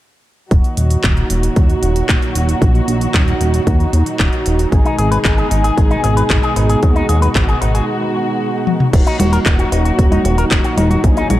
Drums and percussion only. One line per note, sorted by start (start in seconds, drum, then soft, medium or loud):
0.51 kick loud
0.51 closed hi-hat soft
0.64 closed hi-hat soft
0.77 closed hi-hat medium
0.90 closed hi-hat soft
1.04 kick loud
1.04 clap loud
1.04 closed hi-hat medium
1.17 closed hi-hat soft
1.30 closed hi-hat medium
1.43 closed hi-hat medium
1.56 kick loud
1.56 closed hi-hat medium
1.70 closed hi-hat soft
1.83 closed hi-hat medium
1.96 closed hi-hat medium
2.09 kick loud
2.09 clap loud
2.09 closed hi-hat medium
2.22 closed hi-hat soft
2.35 closed hi-hat medium
2.49 closed hi-hat soft
2.62 kick loud
2.62 closed hi-hat medium
2.75 closed hi-hat soft
2.88 closed hi-hat medium
3.01 closed hi-hat medium
3.14 kick loud
3.14 clap loud
3.14 closed hi-hat soft
3.28 closed hi-hat soft
3.41 closed hi-hat medium
3.54 closed hi-hat medium
3.67 kick loud
3.67 closed hi-hat medium
3.80 closed hi-hat soft
3.93 closed hi-hat medium
4.06 closed hi-hat medium
4.20 kick loud
4.20 clap loud
4.20 closed hi-hat medium
4.33 closed hi-hat soft
4.46 closed hi-hat medium
4.59 closed hi-hat soft
4.72 kick loud
4.72 closed hi-hat soft
4.86 closed hi-hat soft
4.99 closed hi-hat medium
5.12 closed hi-hat medium
5.25 kick loud
5.25 clap loud
5.25 closed hi-hat soft
5.38 closed hi-hat soft
5.51 closed hi-hat medium
5.64 closed hi-hat medium
5.78 kick loud
5.78 closed hi-hat medium
5.91 closed hi-hat soft
6.04 closed hi-hat medium
6.17 closed hi-hat medium
6.30 kick loud
6.30 clap loud
6.30 closed hi-hat soft
6.43 closed hi-hat soft
6.56 closed hi-hat medium
6.70 closed hi-hat soft
6.83 kick loud
6.83 closed hi-hat soft
6.96 closed hi-hat soft
7.09 closed hi-hat medium
7.22 closed hi-hat soft
7.35 kick loud
7.35 clap loud
7.35 closed hi-hat soft
7.49 closed hi-hat soft
7.62 closed hi-hat medium
7.75 closed hi-hat medium
8.67 high tom medium
8.80 mid tom medium
8.93 kick loud
8.93 closed hi-hat medium
8.93 crash medium
9.07 closed hi-hat soft
9.20 closed hi-hat medium
9.20 high conga medium
9.33 closed hi-hat soft
9.46 kick loud
9.46 clap loud
9.46 closed hi-hat medium
9.59 closed hi-hat soft
9.72 closed hi-hat medium
9.85 closed hi-hat soft
9.99 kick loud
9.99 closed hi-hat medium
10.12 closed hi-hat soft
10.12 high conga medium
10.25 closed hi-hat medium
10.38 closed hi-hat soft
10.51 kick loud
10.51 clap loud
10.51 closed hi-hat medium
10.64 closed hi-hat soft
10.78 closed hi-hat loud
10.78 high conga medium
10.91 closed hi-hat soft
11.04 kick loud
11.04 closed hi-hat medium
11.17 closed hi-hat soft
11.30 closed hi-hat medium
11.30 high conga medium